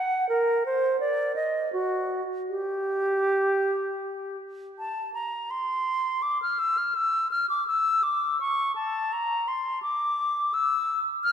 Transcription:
0.00 0.28 F#5 medium
0.29 0.64 A#4 medium
0.66 1.00 C5 medium
1.00 1.35 D5 medium
1.36 1.72 D#5 medium
1.73 2.22 F#4 medium
2.50 4.37 G4 medium
4.79 5.13 A5 medium
5.14 5.52 A#5 medium
5.51 6.24 C6 medium
6.22 6.41 D6 medium
6.42 6.60 F6 medium
6.59 6.79 E6 medium
6.78 6.96 F6 medium
6.95 7.31 E6 medium
7.31 7.49 F6 medium
7.50 7.67 D6 medium
7.67 8.05 E6 medium
8.03 8.40 D6 medium
8.41 8.75 C#6 medium
8.76 9.14 A5 medium
9.13 9.49 A#5 medium
9.48 9.82 C6 medium
9.82 10.55 D6 medium
10.54 11.00 E6 medium
11.24 11.32 F6 medium

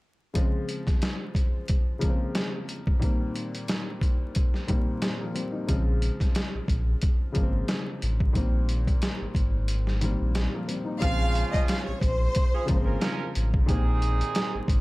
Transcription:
0.33 1.31 C#3 medium
0.33 1.31 F3 medium
0.33 1.32 G#3 medium
0.33 kick loud
0.33 closed hi-hat loud
0.38 1.33 C4 medium
0.69 closed hi-hat medium
0.87 kick medium
0.87 snare soft
0.87 closed hi-hat soft
1.02 snare loud
1.02 closed hi-hat medium
1.35 kick medium
1.35 closed hi-hat medium
1.68 kick loud
1.68 closed hi-hat medium
1.99 2.73 C#3 medium
1.99 2.74 F3 medium
1.99 2.74 G#3 medium
1.99 kick medium
1.99 closed hi-hat medium
2.03 2.10 A#3 medium
2.10 2.78 C4 medium
2.35 snare loud
2.35 closed hi-hat medium
2.69 closed hi-hat medium
2.87 kick medium
2.99 3.97 A#2 medium
2.99 3.98 D#3 medium
2.99 3.98 G3 medium
2.99 3.99 A#3 medium
2.99 kick loud
2.99 closed hi-hat loud
3.04 3.99 C4 medium
3.35 closed hi-hat medium
3.55 closed hi-hat soft
3.68 snare loud
3.68 closed hi-hat medium
4.01 kick medium
4.01 closed hi-hat medium
4.35 kick loud
4.35 closed hi-hat medium
4.54 snare soft
4.67 5.40 A#2 medium
4.67 5.41 D#3 medium
4.67 5.02 G3 medium
4.67 5.03 A#3 medium
4.67 kick medium
4.67 closed hi-hat medium
4.71 5.03 C4 medium
5.02 snare loud
5.02 closed hi-hat medium
5.21 5.35 F3 medium
5.21 5.35 A#3 medium
5.35 5.53 G3 medium
5.35 5.52 C4 medium
5.35 closed hi-hat medium
5.52 5.85 A#3 medium
5.52 5.84 D#4 medium
5.67 6.10 A#1 loud
5.67 6.64 C#3 medium
5.67 6.65 F3 medium
5.67 6.66 G#3 medium
5.67 kick loud
5.67 closed hi-hat loud
5.71 6.66 C4 medium
6.02 closed hi-hat medium
6.20 kick medium
6.20 snare soft
6.20 closed hi-hat soft
6.35 snare loud
6.35 closed hi-hat medium
6.54 6.60 A#1 soft
6.68 6.95 A#1 medium
6.68 kick medium
6.68 closed hi-hat medium
7.02 kick loud
7.02 closed hi-hat medium
7.32 7.63 G#1 medium
7.32 8.06 C#3 medium
7.32 8.07 F3 medium
7.32 8.08 G#3 medium
7.32 kick medium
7.32 closed hi-hat medium
7.37 7.43 A#3 medium
7.43 8.12 C4 medium
7.68 snare loud
7.68 closed hi-hat medium
8.02 8.29 A1 medium
8.02 closed hi-hat medium
8.20 kick medium
8.33 8.89 A#1 loud
8.33 9.30 A#2 medium
8.33 9.31 D#3 medium
8.33 9.31 G3 medium
8.33 9.32 A#3 medium
8.33 kick loud
8.33 closed hi-hat loud
8.37 9.32 C4 loud
8.69 closed hi-hat medium
8.87 kick medium
8.87 closed hi-hat soft
9.02 snare loud
9.02 closed hi-hat loud
9.21 9.27 G#1 soft
9.35 10.16 G#1 medium
9.35 kick medium
9.35 closed hi-hat medium
9.68 closed hi-hat medium
9.87 snare soft
10.00 10.74 A#2 medium
10.00 10.74 D#3 medium
10.00 10.36 G3 medium
10.00 10.36 A#3 medium
10.00 closed hi-hat medium
10.05 10.37 C4 medium
10.21 10.47 A#1 medium
10.35 snare loud
10.35 closed hi-hat medium
10.54 10.68 F3 medium
10.54 10.68 A#3 medium
10.68 10.86 G3 medium
10.68 10.86 C4 medium
10.68 closed hi-hat medium
10.85 11.18 A#3 medium
10.85 11.18 D#4 medium
11.00 11.44 A#1 loud
11.00 11.97 C#3 medium
11.00 11.98 F3 loud
11.00 11.98 F3 medium
11.00 11.99 G#3 medium
11.00 11.98 C#4 loud
11.00 11.98 F4 loud
11.00 11.51 F5 loud
11.00 kick loud
11.00 closed hi-hat loud
11.05 12.00 C4 medium
11.35 closed hi-hat medium
11.53 11.67 D#5 medium
11.53 kick medium
11.53 snare soft
11.53 closed hi-hat medium
11.68 11.86 F5 medium
11.68 snare loud
11.68 closed hi-hat loud
11.85 11.94 A#1 soft
11.85 12.00 C#5 medium
12.01 12.29 A#1 medium
12.01 12.98 C5 loud
12.01 kick medium
12.01 closed hi-hat medium
12.35 kick loud
12.35 closed hi-hat loud
12.54 12.66 C#4 medium
12.54 12.66 F4 medium
12.54 12.66 G#4 medium
12.66 12.96 G#1 medium
12.66 13.40 C#3 medium
12.66 13.40 F3 medium
12.66 13.41 G#3 medium
12.66 kick loud
12.66 closed hi-hat medium
12.70 12.76 A#3 medium
12.76 13.45 C4 medium
12.85 12.98 C#4 medium
12.85 12.98 F4 medium
12.85 12.98 A#4 medium
13.00 13.28 C#4 loud
13.00 13.28 F4 loud
13.00 13.28 A#4 loud
13.00 snare loud
13.00 closed hi-hat medium
13.35 13.62 A1 medium
13.35 closed hi-hat medium
13.54 kick loud
13.66 14.22 A#1 loud
13.66 14.64 A#2 medium
13.66 14.64 D#3 medium
13.66 14.65 A#3 medium
13.66 14.64 C4 loud
13.66 14.64 D#4 loud
13.66 14.65 G4 medium
13.66 14.64 G#4 loud
13.66 kick loud
13.66 closed hi-hat loud
13.70 14.66 C4 loud
14.02 closed hi-hat medium
14.21 closed hi-hat soft
14.35 snare loud
14.35 closed hi-hat loud
14.54 14.60 G#1 soft
14.68 14.81 G#1 medium
14.68 kick medium
14.68 closed hi-hat medium

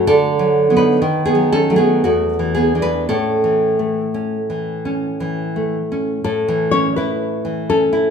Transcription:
0.07 1.00 D3 medium
0.07 0.70 D4 medium
0.07 0.75 A4 loud
0.39 0.69 F#3 medium
0.70 0.99 F#3 medium
0.70 1.00 B3 medium
0.77 1.24 D#4 medium
0.77 1.24 B4 medium
1.02 2.01 D#3 medium
1.25 1.51 B3 medium
1.25 1.52 G#4 medium
1.35 1.69 F#3 medium
1.52 1.77 C#4 medium
1.52 1.76 A4 medium
1.70 2.01 F#3 medium
1.70 2.01 A3 medium
1.76 2.02 B3 medium
1.76 2.03 G#4 medium
2.04 3.07 E2 medium
2.04 2.53 A3 medium
2.04 2.54 F#4 medium
2.39 2.74 E3 medium
2.55 2.75 B3 medium
2.55 2.82 G#4 medium
2.75 3.06 E3 soft
2.75 2.82 D4 medium
2.82 3.08 D4 medium
2.82 3.08 B4 medium
3.09 6.19 A2 medium
3.09 3.79 C#4 medium
3.09 5.16 A4 medium
3.44 4.00 E3 medium
3.79 4.36 A3 soft
4.14 4.71 C#4 soft
4.50 5.06 E3 soft
4.85 5.41 C#4 medium
5.20 5.76 E3 medium
5.56 6.11 A3 soft
5.92 6.24 C#4 medium
6.24 8.10 A2 medium
6.24 6.68 A4 medium
6.48 6.86 E3 medium
6.71 7.10 C#4 medium
6.71 6.93 C#5 loud
6.96 7.73 E4 medium
6.96 7.63 B4 medium
7.45 7.82 E3 medium
7.69 8.07 C#4 medium
7.69 8.10 A4 loud
7.93 8.10 E4 medium

